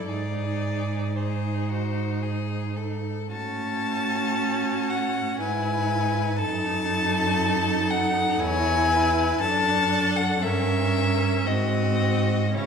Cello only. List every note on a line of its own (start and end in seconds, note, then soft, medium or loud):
0.09 3.06 G#2 soft
3.31 5.36 A2 medium
5.39 6.41 G#2 medium
6.39 8.39 F#2 medium
8.40 9.38 E2 medium
9.40 10.43 F#2 medium
10.42 11.45 G2 medium
11.46 12.56 G#2 medium
12.55 12.66 C#3 medium